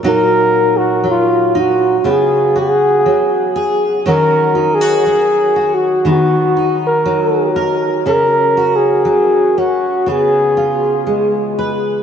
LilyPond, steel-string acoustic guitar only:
\new Staff \with { instrumentName = "Steel-string acoustic guitar" } { \time 4/4 \key fis \major \tempo 4 = 60 << { <fis dis' fis'>4. dis'8 b8 fis'4 gis'8 | <fis cis' fis'>8 dis'16 fis'8. fis'8 b8 dis'4 ais'8 | cis'8 fis'4 cis'8 b8 eis'4 b'8 | } \\ { ais,4 fis4 cis4 fis4 | dis4 fis4 dis4 fis4 | cis4 fis4 cis4 gis4 | } >> }